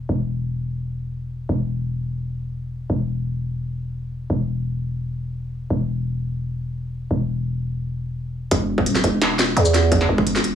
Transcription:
0.09 E1
1.49 E1
2.90 E1
4.30 E1
5.70 E1
7.11 E1
8.51 E1, kick, closed hi-hat
8.78 kick
8.86 D#1, closed hi-hat
8.95 snare, shaker
9.04 E1, kick, closed hi-hat
9.22 snare, closed hi-hat
9.39 snare, closed hi-hat
9.57 E2, closed hi-hat
9.65 shaker
9.74 snare, closed hi-hat
9.92 kick, closed hi-hat
10.01 snare
10.09 E1
10.18 kick
10.27 closed hi-hat
10.36 snare, shaker
10.44 closed hi-hat

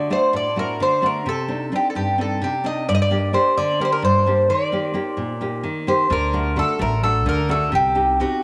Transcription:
0.10 A3 D4 F#4 C5
0.33 A2 D5
0.56 A3 D4 F#4 A#4
0.80 D3 C5
1.02 A3 D4 F#4 A#4
1.26 C3 A4
1.48 C4 D4 D#4
1.72 C4 D4 D#4 G4
1.90 A4
1.95 G2 G4
2.18 C4 D4 D#4 A4
2.42 C3 G4
2.64 C4 D4 D#4 D#5
2.88 G2 D5
2.95 D#5
3.02 D5
3.10 A#3 D4 G4
3.33 A#3 D4 G4 C5
3.57 D3 D5
3.80 A#3 D4 G4 A#4
3.85 C5
3.92 A#4
4.02 G2 C5
4.26 A#3 D4 G4
4.50 D#3 D5
4.72 A#3 D#4 G4
4.94 A#3 D#4 G4
5.17 A#2
5.41 A#3 D#4 G4
5.63 D#3
5.87 A#3 D#4 G4 C5
6.10 D2 D3 A#4
6.33 A3 D4 F#4
6.56 A3 D4 F#4 A4
6.79 A1 A3 A#4
7.03 A3 D4 F#4 A4
7.26 D2 D3 A#4
7.49 A3 D4 F#4 A4
7.72 C2 C3 G4
7.95 C4 D#4 G4
8.20 C4 D#4 F#4 G4

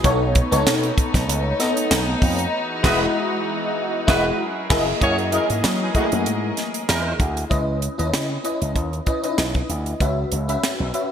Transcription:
Already playing: B3
0.03 B1 A3 B3 D#4 A4 C#5, kick, closed hi-hat
0.35 kick, closed hi-hat
0.51 C#2 B3 D#4 A4 C#5, closed hi-hat
0.66 B2, snare, closed hi-hat
0.83 closed hi-hat
0.98 kick, closed hi-hat
1.14 B1, kick, snare, closed hi-hat
1.28 C#2, closed hi-hat
1.59 B3 D#4 A4 D#5, snare, closed hi-hat
1.77 closed hi-hat
1.91 B1, snare, closed hi-hat
2.22 F2, kick, open hi-hat
2.39 closed hi-hat
2.54 E3 F#4 G#4
2.83 E1 G#3 E4 F#4 B4 D#5, kick, snare, crash
4.07 E1 G#3 E4 F#4 B4 D#5, kick, snare
4.39 F#3 C#4 E4 G#4 A#4
4.69 F#1 A#3 E4 G#4 D#5, kick, snare, crash
5.00 F#2 E3 F#3 A#3 C#4 E4 G#4 A#4 C#5 D#5, kick, closed hi-hat
5.19 closed hi-hat
5.31 E3 A#3 D#4 E4 G#4 A#4 D#5, closed hi-hat
5.50 G#2, closed hi-hat
5.64 F#3, snare, closed hi-hat
5.81 E3 D#4 G#4
5.94 D#3 A3 C#4 E4 F#4 G#4 D#5, kick, closed hi-hat
6.00 A#3
6.12 F#2, closed hi-hat
6.26 G#2, closed hi-hat
6.57 snare, closed hi-hat
6.74 closed hi-hat
6.89 E2 E3 D#4 A#4, snare, closed hi-hat
7.20 D2, kick, closed hi-hat
7.37 closed hi-hat
7.50 C#2 C#4 E4 B4 D#5, kick, closed hi-hat
7.82 closed hi-hat
7.98 D#2 C#4 E4 B4 D#5, closed hi-hat
8.13 C#3, snare, closed hi-hat
8.44 C#4 E4 B4 D#5, closed hi-hat
8.62 C#2, closed hi-hat
8.76 D#2, kick, closed hi-hat
8.93 closed hi-hat
9.06 C#4 E4 B4 D#5, kick, closed hi-hat
9.23 C#4 D#4 B4 D#5, closed hi-hat
9.30 E4
9.38 B1, snare, closed hi-hat
9.54 kick, closed hi-hat
9.69 D2, closed hi-hat
9.86 closed hi-hat
10.00 C#2 C#4 F#4 B4 E5, kick, closed hi-hat
10.32 C#2, closed hi-hat
10.48 C#4 F#4 B4 E5, closed hi-hat
10.64 snare, closed hi-hat
10.80 B1
10.93 C#4 F#4 B4 E5, closed hi-hat

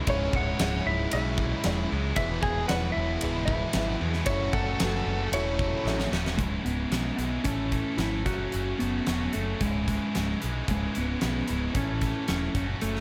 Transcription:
Already playing: C#4 E4
0.07 C#1 C#2 G#2 C#3 G#3 C#4 E4 G#4 C#5 E5, kick, ride bell
0.33 C#1 C#3 G#3 E4 F#5, kick
0.37 C#5
0.59 C#1 G#2 C#3 G#3 E4 G#4 C#5 E5, snare, ride bell
0.85 C#1 C#2 G#2 C#3 G#3 E4 E5
1.11 B1 G#2 C#3 G#3 E4 G#4 C#5 E5, ride bell
1.16 E4
1.37 C#3 G#3 E4, kick
1.63 E1 C#2 G#2 C#3 G#3 E4 G#4 C#5 E5, snare, ride bell
1.90 C#2 G#2 C#3 G#3 E4
2.16 E1 E2 B2 E3 G#3 B3 E4 G#4 B4 E5, kick, ride bell
2.42 E1 G#3 B3 E4 G#4 G#5, kick
2.46 E3
2.67 E1 E3 G#4 B4 C#5 F#5, snare, ride bell
2.71 G#3 B3 E4
2.92 E4 E5
2.96 E1 E2 B2 E3 G#3 B3 E4
3.21 C#1 E3 G#3 G#4 B4 E5, ride bell
3.25 B3 E4
3.46 E4 E5, kick
3.51 E3 G#3 B3
3.73 G#1 E2 B2 E3 G#4 B4 E5, snare, ride bell
3.78 G#3 B3 E4
4.01 E2 B2 E3 G#3 B3 E4
4.05 E3
4.13 snare
4.25 F#1 F#2 C#3 E4 F#4 A4 C#5, kick, ride bell
4.29 F#3 A3 C#4 F#4 E5
4.53 F#1 A3 C#4 F#4 A4 F#5, kick
4.57 F#3
4.80 F#1 F#3 A3 C#4 F#4 A4 B4, snare, ride bell
5.05 F#1 C#3 F#3 A3 C#4 F#4
5.10 F#2
5.32 E1 F#3 A3 C#4 E4 F#4 A4 C#5 E5, ride bell
5.59 F#3 A3 C#4 F#4, kick
5.85 A1 F#2 C#3 F#3 A3 C#4 F#4 A4 E5, snare
5.90 F#4
6.00 snare
6.12 D#1 F#2 C#3 F#3 A3 C#4 F#4, snare
6.26 snare
6.38 C#1 C#2 G#2 C#3 G#3 E4, kick, closed hi-hat
6.42 G#3 E4
6.64 C#1 C#3 G#3 B3 E4, closed hi-hat
6.91 B1 G#2 C#3 G#3 E4, snare, closed hi-hat
7.16 B1 G#3 B3 E4, closed hi-hat
7.21 C#2 G#2 C#3
7.44 A1 A2 E3 A3 C#4 E4, kick, closed hi-hat
7.49 A4
7.72 A2 E3 A3 C#4 E4 A4, kick, closed hi-hat
7.98 G#1 A3 C#4 E4 A4, snare, closed hi-hat
8.26 F#1 F#2 C#3 F#3 A3 C#4 F#4, kick, closed hi-hat
8.30 F#4
8.52 F#1 F#2 C#3 F#3 A3 C#4 F#4, closed hi-hat
8.79 F#1 F#3 A3 B3 C#4 F#4, closed hi-hat
9.06 E1 F#2 C#3 F#3 A3 C#4 F#4, snare, closed hi-hat
9.33 F#1 F#2 C#3 F#3 A3 C#4 F#4, closed hi-hat
9.61 C#1 C#2 G#2 C#3 G#3, kick, closed hi-hat
9.65 E4
9.88 C#2 G#2 C#3 G#3 E4, kick, closed hi-hat
10.15 C#1 G#2 C#3 G#3 E4, snare, closed hi-hat
10.40 B1 C#2 G#2 C#3 G#3 E4, closed hi-hat
10.68 C#1 C#2 G#2 C#3 G#3 E4, kick, closed hi-hat
10.94 C#1 C#3 G#3 B3 E4, closed hi-hat
11.20 B1 G#2 C#3 G#3 E4, snare, closed hi-hat
11.47 C#1 C#2 G#2 C#3 G#3 E4, closed hi-hat
11.74 A1 A2 E3 A3 C#4 E4, kick, closed hi-hat
11.78 A4
12.01 A2 E3 A3 C#4 E4 A4, kick, snare, closed hi-hat
12.27 E1 A3 C#4 E4 A4, snare, closed hi-hat
12.54 F#1 F#2 C#3 F#3 A3 C#4 F#4, kick, closed hi-hat
12.58 F#4
12.81 F#1 F#2 C#3 F#3 A3 C#4 F#4, closed hi-hat
12.96 snare

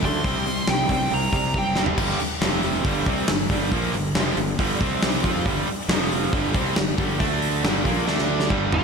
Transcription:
0.01 D2 D3 A3 D4 C6, kick, open hi-hat
0.24 C2 C3 G3 C4, kick, open hi-hat
0.46 C3 G3, open hi-hat
0.67 C2 C3 G3 G5, snare, open hi-hat
0.89 C2 C3 G3 C4 G5, kick, open hi-hat
1.10 C2 C3 G3 A#5, open hi-hat
1.32 C2 C3 G3, kick, open hi-hat
1.36 A#5
1.54 F#1 C3 G3 C4, kick
1.58 G5
1.75 C3 G3 C4, snare
1.86 floor tom
1.97 G1 G2 D3 G3, kick, crash
2.20 muted fingered electric bass stroke, muted overdriven electric guitar stroke, muted distorted electric guitar stroke, open hi-hat
2.42 F1 F2 C3 F3, snare, open hi-hat
2.63 open hi-hat
2.85 G1 G2 D3 G3, kick, open hi-hat
3.06 C2 C3 G3 C4, kick, open hi-hat
3.28 G1 G2 D3, snare, open hi-hat
3.49 G1 G2 D3 G3, kick, open hi-hat
3.71 A#1 A#2 F3 A#3, kick, open hi-hat
3.93 G1 G2 D3, open hi-hat
4.14 F1 F2 C3 F3, snare, open hi-hat
4.36 G1 G2 D3, open hi-hat
4.59 G1 G2 D3 G3, kick, open hi-hat
4.81 C2 C3 G3 C4, kick, open hi-hat
5.02 snare, open hi-hat
5.23 F2 F3 C4 F4, kick, open hi-hat
5.45 G1 G2 D3 G3, kick, open hi-hat
5.67 muted fingered electric bass stroke, muted distorted electric guitar stroke, muted overdriven electric guitar stroke, open hi-hat
5.89 F1 F2 C3 F3, snare, open hi-hat
6.12 open hi-hat
6.33 G1 G2 D3 G3, kick, open hi-hat
6.54 C2 C3 G3 C4, kick, open hi-hat
6.76 G1 G2 D3, snare, open hi-hat
6.97 G1 G2 D3 G3, kick, open hi-hat
7.19 D2 D3 A3 D4, kick, open hi-hat
7.42 open hi-hat
7.62 G1 G2 D3 G3, snare, open hi-hat
7.85 A#1 A#2 F3 A#3, kick, open hi-hat
8.06 D2 D3 A3 D4, snare
8.18 snare
8.40 snare
8.50 G1 G2 D3 G3, kick
8.72 F4, floor tom

